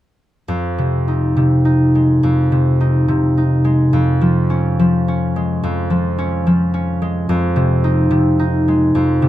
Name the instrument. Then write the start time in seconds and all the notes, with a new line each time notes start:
harp
0.48 F2
0.78 C3
1.08 D#4
1.37 C3
1.65 D#4
1.95 G#3
2.23 F2
2.52 C3
2.81 D#4
3.08 C3
3.37 D#4
3.64 G#3
3.93 F2
4.21 F3
4.50 C#4
4.79 F3
5.08 C#4
5.36 G#3
5.63 F2
5.90 F3
6.18 C#4
6.47 F3
6.74 C#4
7.02 G#3
7.29 F2
7.56 C3
7.84 D#4
8.11 C3
8.39 D#4
8.68 G#3
8.95 F2
9.22 C3